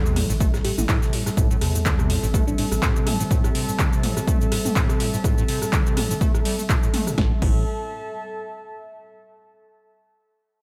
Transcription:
Already playing: E2 G3 C4 A4 E5
0.06 C3, shaker
0.16 A2, cross-stick, mid tom, open hi-hat
0.30 A1 A2, shaker
0.40 A3, kick, shaker
0.54 A2, cross-stick, snare, shaker
0.65 A2 G4, open hi-hat
0.78 A1 A2 E4, mid tom, shaker
0.89 A2 E4, kick, cross-stick, snare, clap, shaker
0.95 A5
1.02 C3, snare, shaker
1.13 A2, open hi-hat
1.26 A2, cross-stick, snare, shaker
1.37 A1 A2, kick, shaker
1.51 A2, shaker
1.61 E2 C3, cross-stick, open hi-hat
1.75 A2, shaker
1.85 D3, kick, snare, clap, shaker
1.99 C3, cross-stick, shaker
2.10 A2, open hi-hat
2.23 A1 A2, shaker
2.34 A3, kick, cross-stick, shaker
2.47 A2 D4, shaker
2.58 A2 D4, open hi-hat
2.72 A1 A2, cross-stick, shaker
2.82 A2, kick, snare, clap, shaker
2.96 C3, shaker
3.07 A2, cross-stick, mid tom, open hi-hat
3.20 A2, shaker
3.31 A2, kick, shaker
3.44 A2, cross-stick, shaker
3.55 C3, open hi-hat
3.68 A2, shaker
3.79 D3, kick, cross-stick, clap, shaker
3.93 C3, shaker
4.03 A2, mid tom, open hi-hat
4.17 A2, cross-stick, shaker
4.28 A3, kick, shaker
4.41 A2, shaker
4.52 A2, cross-stick, open hi-hat
4.65 A2, mid tom, shaker
4.76 A2, kick, clap, shaker
4.89 C3, cross-stick, shaker
5.00 A2, open hi-hat
5.14 A2, shaker
5.24 A2, kick, cross-stick, shaker
5.38 A2, shaker
5.48 C3, open hi-hat
5.62 A2, cross-stick, shaker
5.73 D3, kick, clap, shaker
5.86 C3, shaker
5.97 A2, cross-stick, mid tom, open hi-hat
6.11 A2, shaker
6.21 A3, kick, shaker
6.35 A2, cross-stick, shaker
6.45 G3, open hi-hat
6.59 A3, shaker
6.69 A#2, kick, cross-stick, clap, shaker
6.83 A2, shaker
6.94 A3, mid tom, open hi-hat
7.07 A2, cross-stick, shaker
7.18 A1 A2 G3 C4 A4, kick, snare
7.26 E5
7.33 A5
7.42 A1 A2, kick, crash

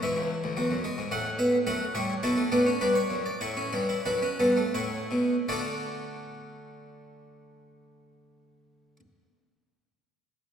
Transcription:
0.03 G#2 E3 E5
0.17 C#2
0.44 D2
0.57 E2 F#3
0.71 F#2
0.84 G#3
0.98 G#2
1.11 A2 A3 F#5
1.39 B3 E5
1.67 F#2 A3 F#4 F#5
1.95 A2 G3 C#5
2.23 B2 F#3 E4 A4
2.37 A3
2.52 A2 B3 D4
2.66 C#4
2.81 G2 D4 B4
2.95 C#5
3.10 F#2
3.26 D5
3.41 A2 E4 C#5
3.57 C#4
3.73 G2 D4
3.89 E4
4.06 F#2 D4 F#4 B4
4.22 C#4
4.40 G2 B3 A4
4.57 A3
4.74 A2 E4 C#5
5.11 B2
5.49 D3 A3 D4 F#4 A4 D5

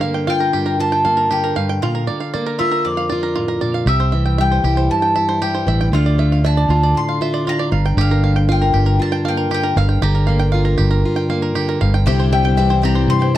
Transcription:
Already playing: G2 D3 D4 G4 A#4 F5 G5
0.01 A#3 F5
0.14 G5
0.27 F4 F5 G5
0.40 A#4
0.53 G2 G4
0.66 A#4
0.80 F4 A5
0.92 G5
1.05 A#3 F5
1.17 A#4
1.31 D3 G4 G5
1.44 A#4
1.56 G2 F5
1.69 G5
1.82 A#2 F4 F5
1.95 A#4
2.07 D3 D5
2.20 F5
2.34 A#3 D5
2.46 A#4
2.59 F4 E5
2.71 A#4
2.85 F2 D5
2.97 F5
3.10 F4 D5
3.23 A#4
3.36 A2 F4
3.48 A#4
3.61 A#2 D5
3.74 F5
3.86 C2 C3 G4 E5
4.00 C5
4.12 E3 E5
4.26 G5
4.38 G3 E5 G5
4.51 C5
4.64 C2 E4 G4
4.77 C5
4.90 G2 A5
5.02 G5
5.16 E4 E5
5.29 C5
5.42 G3 G4 G5
5.55 C5
5.67 A1 E3 E5
5.81 G5
5.92 D2 D3 A3 D4 F4 F5
6.06 D5
6.18 A3 E5
6.32 F5
6.44 D4 E5 A5
6.57 D5
6.69 D2 F4
6.83 D5
6.95 A2 C6
7.09 F5
7.21 F4 E5
7.34 D5
7.47 D4 F4 A#5
7.59 D5
7.71 G1 G2 F5
7.86 G5
7.97 G1 D3 G4 F5
8.11 A#4
8.24 A#3 F5
8.36 G5
8.49 F4 F5 G5
8.62 A#4
8.73 G1 G2 G4
8.86 A#4
8.99 F4 A5
9.12 G5
9.25 A#3 F5 G5
9.37 A#4
9.51 D3 G4 G5
9.63 A#4
9.76 G1 G2 F5
9.89 G5
10.02 G1 D3 G4 A#5
10.15 A#4
10.27 A#3 F5
10.39 G5
10.52 F4 F5
10.65 A#4
10.78 G1 G2 G4
10.91 A#4
11.05 F4
11.16 G5
11.30 A#3 F5
11.42 A#4
11.55 D3 G4
11.69 A#4
11.81 G1 G2 F5
11.94 G5
12.06 C2 C3 G3 C4 E4 G4
12.20 C5
12.33 G3 E5 G5
12.43 C4 E4 G4 G5
12.57 C3 E3 G3 C4 E4 G4 E5
12.69 C4 E4 G4 C5
12.82 G3 C4 E4 G4 A#5
12.95 C5
13.08 G2 C3 C6
13.19 C4 E4 G4 G5

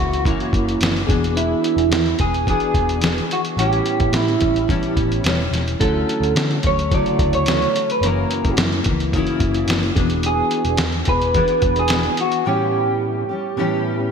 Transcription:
Already playing: C#2 F#2 C#3 E3 A#3 E4 F#4
0.13 closed hi-hat
0.24 F#2 C#3 E3 A#3 C#4 E4 F#4, kick, closed hi-hat
0.40 closed hi-hat
0.53 F#1, kick, closed hi-hat
0.69 closed hi-hat
0.81 F#1, snare, closed hi-hat
0.96 closed hi-hat
1.07 E1 B3 D4 F#4 G#4, kick, closed hi-hat
1.11 E3 B3
1.24 closed hi-hat
1.37 E4, closed hi-hat
1.64 closed hi-hat
1.77 E1, closed hi-hat
1.90 E2, snare, closed hi-hat
2.06 closed hi-hat
2.19 E1 B3 D4 G#4, kick, closed hi-hat
2.34 closed hi-hat
2.46 E3 B3 D4 F#4 G#4, kick, closed hi-hat
2.60 closed hi-hat
2.74 E1, kick, closed hi-hat
2.89 closed hi-hat
3.01 E3 B3 D4, snare, closed hi-hat
3.05 G#4
3.18 closed hi-hat
3.31 F#4, closed hi-hat
3.45 closed hi-hat
3.57 A1 A2 E3 G3 B3 C#4 E4 G4, closed hi-hat
3.73 closed hi-hat
3.86 closed hi-hat
4.00 A1, kick, closed hi-hat
4.12 A2 E4, snare, closed hi-hat
4.28 closed hi-hat
4.40 A1 C#4 E4, kick, closed hi-hat
4.44 G3
4.56 closed hi-hat
4.68 A2 E3 G3 B3 C#4 E4 G4, kick, closed hi-hat
4.83 closed hi-hat
4.96 A1, kick, closed hi-hat
5.12 closed hi-hat
5.23 E1 E3 G3 C#4, snare, closed hi-hat
5.28 E4
5.51 E1, snare, closed hi-hat
5.68 closed hi-hat
5.79 D2 D3 F#3 A3 C#4 E4 F#4 A4, kick, closed hi-hat
6.09 closed hi-hat
6.21 D2, closed hi-hat
6.35 D3, snare, closed hi-hat
6.51 closed hi-hat
6.63 D2 A3 C#4 C#5, kick, closed hi-hat
6.67 F#3
6.79 closed hi-hat
6.90 C#3 D3 F#3 A3 E4 F#4, kick, closed hi-hat
6.94 D5
7.06 closed hi-hat
7.19 D2, kick, closed hi-hat
7.33 C#5, closed hi-hat
7.46 D3 F#3 A3, snare, closed hi-hat
7.51 C#4
7.62 closed hi-hat
7.76 closed hi-hat
7.90 B4, closed hi-hat
8.01 F#1 F#2 C#3 E3 A#3 C#4 E4 F#4, closed hi-hat
8.07 A#4
8.31 closed hi-hat
8.44 F#1, kick, closed hi-hat
8.57 F#2, snare, closed hi-hat
8.72 closed hi-hat
8.84 C#2 A#3 E4, kick, closed hi-hat
8.89 E3
9.00 closed hi-hat
9.12 F#2 C#3 E3 A#3 C#4 E4 F#4, kick, closed hi-hat
9.17 E4
9.27 closed hi-hat
9.40 F#1, kick, closed hi-hat
9.54 closed hi-hat
9.67 F#1, snare, closed hi-hat
9.83 closed hi-hat
9.95 E1 B3 D4 F#4 G#4, kick, closed hi-hat
9.99 E3 B3
10.10 closed hi-hat
10.23 G#4, closed hi-hat
10.51 closed hi-hat
10.65 E1, closed hi-hat
10.77 E2, snare, closed hi-hat
10.92 closed hi-hat
11.05 E1 G#4 B4, kick, closed hi-hat
11.10 B3 D4
11.22 closed hi-hat
11.33 E3 B3 D4 F#4 G4 G#4, kick, closed hi-hat
11.43 G#4
11.48 closed hi-hat
11.62 E1, kick, closed hi-hat
11.76 G#4, closed hi-hat
11.88 E3 B3 D4, snare, closed hi-hat
11.93 G#4
12.03 closed hi-hat
12.17 F#4, closed hi-hat
12.32 closed hi-hat
12.45 A2 E3 G3 B3 C#4 E4 G4
13.29 G3 C#4 G4
13.56 A2 E3 G3 B3 C#4 E4 G4

